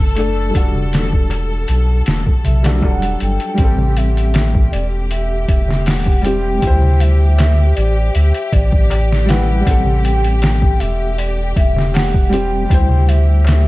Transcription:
Already playing: sub bass F#1, upright piano A3 D4 B4, string section A4
0.15 upright piano A3 D4, closed hi-hat
0.20 upright piano A4
0.50 upright piano G3 D4
0.55 sub bass E1, upright piano F#4, kick, closed hi-hat
0.60 upright piano A4
0.75 darbuka dum
0.93 snare, closed hi-hat
1.13 kick
1.30 closed hi-hat, darbuka tek
1.68 sub bass B1, closed hi-hat
2.06 sub bass E1, snare, closed hi-hat
2.27 kick
2.44 sub bass B1, soft synth lead E5, closed hi-hat, darbuka dum
2.63 upright piano G3 D4 F#4, snare, closed hi-hat
2.67 upright piano A4
2.80 sub bass E1, upright piano F#3 G3 D4, soft synth lead F#5, kick, darbuka tek
2.85 upright piano A4
3.02 closed hi-hat
3.20 sub bass G1, soft synth lead G5, closed hi-hat
3.40 closed hi-hat
3.55 upright piano G3, string section G4, kick, closed hi-hat
3.59 sub bass A1, upright piano C4
3.64 upright piano A4
3.78 darbuka dum
3.97 soft synth lead E5, closed hi-hat
4.17 closed hi-hat
4.34 snare, closed hi-hat, darbuka tek
4.55 kick
4.72 sub bass E1, soft synth lead D5, closed hi-hat
5.11 soft synth lead E5, closed hi-hat
5.48 sub bass E1, soft synth lead E5, kick, closed hi-hat
5.68 snare, darbuka dum
5.86 soft synth lead F#5, snare, open hi-hat, darbuka tek
6.06 kick
6.22 upright piano G3 C4, soft synth lead G5, closed hi-hat
6.26 upright piano G4
6.58 upright piano G3
6.62 sub bass D2, upright piano E4, kick, closed hi-hat
6.67 upright piano C5
6.82 darbuka dum
7.00 soft synth lead E5, closed hi-hat
7.38 snare, closed hi-hat, darbuka tek
7.75 sub bass A1, soft synth lead D5, closed hi-hat
8.14 sub bass D2, soft synth lead E5, closed hi-hat
8.34 closed hi-hat
8.52 sub bass A1, soft synth lead D5, kick, closed hi-hat
8.73 kick
8.90 closed hi-hat, darbuka tek
9.12 snare
9.26 upright piano G3 E4, soft synth lead F#5, closed hi-hat
9.30 upright piano B4, snare
9.61 upright piano G3
9.65 sub bass A1, upright piano C4, kick, closed hi-hat
9.71 upright piano A4
9.86 darbuka dum
10.05 soft synth lead G5, closed hi-hat
10.24 closed hi-hat
10.41 soft synth lead G5, snare, closed hi-hat, darbuka tek
10.62 kick
10.79 sub bass E1, soft synth lead E5, closed hi-hat
11.18 soft synth lead D5, closed hi-hat
11.56 sub bass E1, soft synth lead E5, kick, closed hi-hat
11.76 snare, darbuka dum
11.94 soft synth lead F#5, snare, open hi-hat, darbuka tek
12.14 kick
12.29 upright piano G3 C4, soft synth lead G5, closed hi-hat
12.34 upright piano G4
12.65 upright piano G3
12.69 sub bass D2, upright piano E4, kick, closed hi-hat
12.74 upright piano C5
12.89 darbuka dum
13.08 soft synth lead E5, closed hi-hat
13.44 closed hi-hat, darbuka tek
13.49 snare

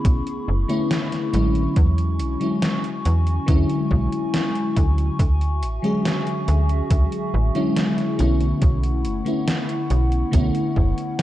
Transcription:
Already playing: fm electric piano D3 A3 B3 C#4 G#4, ambient pad E4 B5 C#6
0.05 fm bass B1, kick, closed hi-hat
0.27 closed hi-hat
0.48 fm bass F#1
0.68 fm electric piano D3 A3 B3 C#4 E4, closed hi-hat
0.91 snare, closed hi-hat
1.12 snare, closed hi-hat
1.33 fm bass A1, fm electric piano D3 F#3 G#3 C#4 E4, closed hi-hat
1.55 closed hi-hat
1.76 fm bass E2, ambient pad F#4 G#5, kick, closed hi-hat
1.98 closed hi-hat
2.19 fm bass B1, closed hi-hat
2.40 fm electric piano D3 F#3 G#3 C#4 E4, closed hi-hat
2.62 snare, closed hi-hat
2.84 closed hi-hat
3.05 fm bass E2, closed hi-hat
3.27 closed hi-hat
3.46 fm bass E2, fm electric piano D3 F#3 G#3 C#4 E4, kick, closed hi-hat
3.70 closed hi-hat
3.91 fm bass B1, kick
4.12 closed hi-hat
4.34 snare, closed hi-hat
4.55 closed hi-hat
4.77 fm bass D2, kick, closed hi-hat
4.98 closed hi-hat
5.19 fm bass D2, ambient pad F#4 E5, kick, closed hi-hat
5.41 closed hi-hat
5.62 fm bass A1, closed hi-hat
5.82 fm electric piano D3 F#3 G#3 C#4 G#4, closed hi-hat
6.05 snare, closed hi-hat
6.27 closed hi-hat
6.48 fm bass D2, closed hi-hat
6.69 closed hi-hat
6.91 fm bass D2, kick, closed hi-hat
7.12 closed hi-hat
7.34 fm bass A1
7.55 fm electric piano D3 F#3 G#3 C#4 E4, closed hi-hat
7.76 snare, closed hi-hat
7.98 snare, closed hi-hat
8.18 fm bass B1, fm electric piano D3 A3 B3 C#4 E4, ambient pad E4 F#5, closed hi-hat
8.41 closed hi-hat
8.62 fm bass B1, kick, closed hi-hat
8.83 closed hi-hat
9.05 fm bass F#1, closed hi-hat
9.25 fm electric piano D3 A3 B3 C#4 E4, closed hi-hat
9.48 snare, closed hi-hat
9.69 closed hi-hat
9.90 fm bass B1, closed hi-hat
10.12 closed hi-hat
10.31 fm bass B1, fm electric piano D3 A3 B3 C#4 E4, kick, closed hi-hat
10.55 closed hi-hat
10.76 fm bass F#1, kick
10.98 closed hi-hat
11.19 snare, closed hi-hat

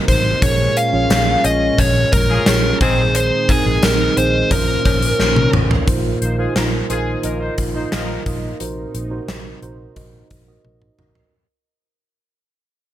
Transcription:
Already playing: analog synth pad C3 A#3 D#4, tine electric piano C4 D#4 F#4 A#4
0.08 fingered electric bass A1, lead electric guitar C5, kick, closed hi-hat
0.42 fingered electric bass A#1, analog synth pad A#2 G#3 C#4, tine electric piano A#2 C#4 F4 G#4 A#4, lead electric guitar C#5, kick, closed hi-hat, cowbell
0.77 lead electric guitar F5, closed hi-hat
0.93 fingered electric bass A#1, tine electric piano C#4 F4 G#4 C#5
1.10 fingered electric bass A#1, snare, closed hi-hat, tambourine, cowbell
1.44 fingered electric bass A#1, lead electric guitar D#5, closed hi-hat, cowbell
1.78 fingered electric bass A#1, lead electric guitar C#5, kick, closed hi-hat, cowbell
2.13 fingered electric bass A#1, lead electric guitar A#4, kick, closed hi-hat
2.30 horn section F3 C#4 G#4
2.46 fingered electric bass A#1, tine electric piano C#4 F4 G#4 C#5, snare, closed hi-hat, tambourine, cowbell
2.80 fingered electric bass A#1, tine electric piano A#2 C4 D#4 G#4 C5, analog synth pad D#3 D#4, horn section D#3 C4 G#4, lead electric guitar C5, kick, closed hi-hat
3.15 lead electric guitar C5, closed hi-hat, cowbell
3.48 tine electric piano C4 D#4 G#4 A#4, lead electric guitar G#4, kick, closed hi-hat
3.66 fingered electric bass A#1
3.83 fingered electric bass A#1, lead electric guitar A#4, snare, closed hi-hat, tambourine, cowbell
4.16 fingered electric bass A#1, tine electric piano C4 D#4 G#4 D#5, lead electric guitar C5, closed hi-hat
4.50 fingered electric bass A#1, tine electric piano A#2 C#4 F4 A#4 C5, analog synth pad A#3 C#4, lead electric guitar A#4, kick, closed hi-hat, cowbell
4.85 fingered electric bass A#1, kick, closed hi-hat, cowbell
5.02 closed hi-hat
5.20 fingered electric bass A#1, snare, cowbell
5.36 high tom
5.53 fingered electric bass A1, mid tom
5.71 floor tom
5.87 fingered electric bass A#1, tine electric piano A#2 D#4 F4 A#4 C5, analog synth pad D#3 A#3 F4, kick, closed hi-hat
6.21 fingered electric bass A#1, horn section F3 D#4 C5, closed hi-hat
6.38 horn section G#3 F4 G#4, tine electric piano D#4 F4 A#4 C5
6.56 fingered electric bass A#1, horn section F3 D#4 A#4, snare, closed hi-hat
6.89 fingered electric bass A#1, horn section G#3 F4 G#4, tine electric piano D#4 F4 A#4 C5, closed hi-hat
7.23 fingered electric bass A#1, horn section F3 D#4 A#4, tine electric piano D#4 F4 A#4 D#5, closed hi-hat
7.41 horn section F3 D#4 C5
7.58 fingered electric bass A#1, kick, closed hi-hat
7.74 horn section F3 D#4 C5, tine electric piano D#4 F4 A#4 D#5
7.92 fingered electric bass A#1, horn section F3 D#4 A#4, snare, closed hi-hat
8.26 fingered electric bass A#1, tine electric piano D#4 F4 A#4 D#5, kick, closed hi-hat
8.59 fingered electric bass A#1, tine electric piano A#2 D#4 F#4 A#4 C5, analog synth pad C3 D#4, closed hi-hat
8.94 fingered electric bass A#1, closed hi-hat
9.10 tine electric piano D#4 F#4 A#4 C5
9.28 fingered electric bass A#1, snare, closed hi-hat
9.62 fingered electric bass A#1, tine electric piano D#4 F#4 A#4 C5, closed hi-hat
9.96 fingered electric bass A#1, tine electric piano D#4 F#4 A#4 D#5, kick, closed hi-hat
10.31 fingered electric bass A#1, kick, closed hi-hat
10.47 tine electric piano D#4 F#4 A#4 D#5
10.65 fingered electric bass A#1, high tom
10.82 mid tom
10.98 fingered electric bass A#1, tine electric piano D#4 F#4 A#4 D#5, mid tom
11.15 floor tom

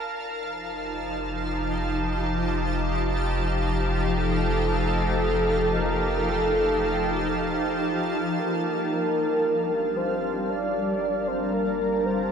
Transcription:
Already playing: analog synth bass F1, ambient pad F3 F5 A5
0.08 ambient pad D#4
0.57 ambient pad G4
4.17 soft synth lead A4
5.76 soft synth lead A#4
6.18 soft synth lead A#4
6.30 soft synth lead A4
8.36 analog synth bass G1, ambient pad G3, soft synth lead A#4
8.57 ambient pad D4
9.97 soft synth lead C5
10.05 ambient pad A#4
10.50 soft synth lead D5
11.27 soft synth lead C5
11.53 soft synth lead A#4
12.05 soft synth lead C5

